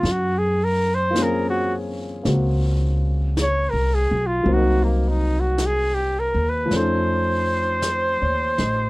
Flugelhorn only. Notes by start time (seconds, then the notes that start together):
Already playing: F4
0.11 F#4
0.39 G#4
0.64 A#4
0.95 C5
1.23 A#4
1.50 F#4
3.42 C#5
3.70 A#4
3.94 G#4
4.27 F4
4.53 F#4
4.83 A#3
5.09 D#4
5.40 F#4
5.66 G#4
5.94 G4
6.19 A#4
6.49 B4
6.76 C5